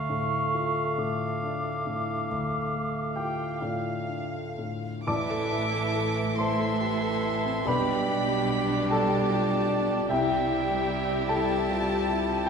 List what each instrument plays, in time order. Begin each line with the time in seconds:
Already playing: grand piano D2, bassoon A3, cor anglais F5, flute C#6
0.09 grand piano A2
0.55 grand piano F4
0.98 grand piano A2, flute D6
1.43 grand piano D4
1.87 grand piano A2
2.31 grand piano D2
2.75 grand piano A3
3.16 grand piano F4 G4 G5, violin section G5
3.60 grand piano A2 F4 D5 F5, violin section F5
4.08 grand piano D4
4.58 grand piano A2
5.06 grand piano A1 D5 A5 D6, double bass section A1, cello section A2, timpani A2, viola section E3 E4, bassoon E3, french horn section E3 E4, violin section A4 D6, cor anglais E5, flute A5
5.30 grand piano A4
5.51 grand piano E4
5.73 grand piano A3
5.95 grand piano A4
6.16 grand piano E4
6.37 viola section E3 E4, bassoon E3, french horn section E3 E4, grand piano A3 C5 A5 C6, violin section A4 C6, cor anglais E5, flute A5
6.60 grand piano A4
6.80 grand piano G4
7.02 grand piano A4
7.24 grand piano E4
7.45 grand piano C4
7.66 grand piano B1 B4 G5 B5, double bass section B1, cello section B2, bassoon G3, french horn section G3 D4, viola section G3 D4, violin section G4 B5, cor anglais D5, flute G5
7.87 grand piano G4
8.08 grand piano D4
8.28 grand piano G3
8.48 grand piano G4
8.68 grand piano D4
8.89 grand piano G3 A4 A5, violin section A5
9.10 grand piano G4
9.30 grand piano F4
9.50 grand piano G4
9.69 grand piano D4
9.90 grand piano G4
10.09 grand piano C2 G4 E5 G5, double bass section C2, cello section C3, bassoon G3, french horn section G3 E4, viola section G3 E4, violin section G4 G5, cor anglais E5, flute G5
10.30 grand piano G4
10.50 grand piano E4
10.70 grand piano G3
10.90 grand piano G4
11.11 grand piano E4
11.29 grand piano G3 A4 A5, violin section A5
11.50 grand piano G4
11.70 grand piano F4
11.89 grand piano G4
12.10 grand piano E4
12.31 grand piano G4